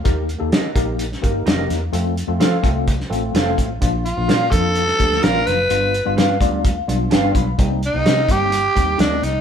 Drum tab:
HH |x-x-x-x-x-x-x-x-|x-x-x-x-x-x-x-x-|x-x-x-x-x-x-x-x-|x-x-x-x-x-x-x-x-|
SD |----o----o--o-o-|----o----o--o---|----o----o-oo-o-|----o-------o---|
BD |o-----o---o-----|------o-o-----o-|o-----o---o-----|------o-o-----o-|

HH |x-x-x-x-x-x-x-x-|
SD |----o-------o-o-|
BD |o-----o---o-----|